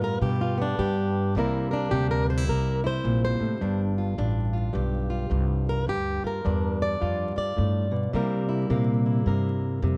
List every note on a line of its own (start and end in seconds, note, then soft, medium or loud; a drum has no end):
0.00 0.21 G2 medium
0.00 0.20 A2 medium
0.00 0.57 B3 soft
0.00 0.40 F4 soft
0.00 0.22 A#4 medium
0.21 0.78 G2 medium
0.21 0.76 B2 medium
0.21 0.78 G4 medium
0.41 0.60 F4 medium
0.58 1.33 B3 soft
0.58 1.36 D4 medium
0.79 1.33 G2 medium
0.79 1.35 G2 medium
0.79 1.35 G4 medium
1.35 1.90 C2 medium
1.35 1.92 C3 medium
1.35 4.01 G3 medium
1.35 3.62 A#3 soft
1.35 1.73 E4 medium
1.39 1.70 A#4 medium
1.71 2.25 D4 medium
1.71 1.91 A#4 soft
1.91 2.46 D2 loud
1.91 2.47 C3 medium
1.91 2.10 G4 medium
2.11 2.29 A#4 medium
2.27 2.38 D4 soft
2.27 2.48 C5 medium
2.38 2.83 E4 soft
2.48 3.03 C2 medium
2.48 3.61 C3 medium
2.48 2.86 A#4 medium
2.84 3.59 E4 soft
2.84 3.23 C5 medium
3.04 3.37 A#1 medium
3.04 3.40 A#2 medium
3.25 3.80 C5 loud
3.40 3.61 A2 medium
3.40 muted upright bass stroke soft
3.61 4.16 G1 medium
3.61 4.18 G2 medium
3.61 4.18 D4 medium
3.98 4.53 F4 soft
4.18 4.73 A1 medium
4.18 4.72 G2 medium
4.18 5.85 D4 soft
4.53 5.09 F4 soft
4.73 5.29 B1 medium
4.73 5.29 G2 medium
4.73 5.69 G4 medium
5.10 5.85 F4 soft
5.30 5.85 C2 medium
5.30 5.86 G2 medium
5.69 5.88 A#4 medium
5.87 6.20 D2 medium
5.87 6.43 G2 medium
5.87 6.26 G4 medium
6.24 7.00 F4 soft
6.24 6.82 A#4 medium
6.24 muted upright bass stroke soft
6.45 6.99 E2 medium
6.45 6.99 G2 medium
6.45 8.11 D4 soft
6.82 7.37 D5 loud
7.00 7.34 F2 medium
7.00 7.56 G2 medium
7.00 7.35 F4 soft
7.36 8.11 F4 soft
7.36 8.13 D5 medium
7.36 muted upright bass stroke soft
7.57 8.12 G2 medium
7.57 7.91 A2 medium
7.91 8.13 B2 medium
8.13 8.68 C3 medium
8.13 8.69 C3 medium
8.13 9.97 G3 medium
8.13 8.70 A#3 soft
8.13 8.47 E4 medium
8.13 9.26 A#4 medium
8.49 9.05 E4 soft
8.70 9.24 A#2 medium
8.70 9.26 C3 medium
8.70 9.97 A#3 medium
9.06 9.97 E4 soft
9.26 9.81 G2 medium
9.26 9.82 C3 medium
9.26 9.97 A#4 soft
9.82 9.97 F2 medium
9.82 9.97 C3 medium